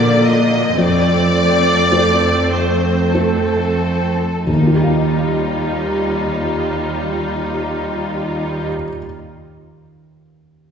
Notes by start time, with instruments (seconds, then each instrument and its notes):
Already playing: cello section A#2, viola section D3 A#3, felt piano A#3 F4 D5 F5, violin section D5
0.24 violin section D#5
0.78 felt piano F2, cello section F2, viola section A3 C4, violin section D5
1.92 felt piano A3 F4 C5
2.52 violin section C5
3.14 felt piano A3 F4 C5, violin section A4
4.47 felt piano D#2, cello section D#2, viola section G3 F4, violin section D#4
4.53 felt piano D#3
4.61 felt piano A#3
4.67 felt piano F4
4.75 felt piano G4
4.82 felt piano F5